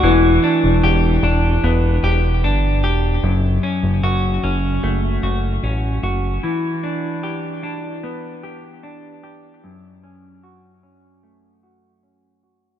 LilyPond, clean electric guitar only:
\new Staff \with { instrumentName = "Clean electric guitar" } { \time 4/4 \key e \dorian \tempo 4 = 75 e8 d'8 g'8 d'8 b8 g'8 d'8 g'8 | fis,8 cis'8 fis'8 cis'8 a8 fis'8 cis'8 fis'8 | e8 d'8 g'8 d'8 b8 g'8 d'8 g'8 | fis,8 cis'8 fis'8 cis'8 a8 fis'8 cis'8 fis'8 | }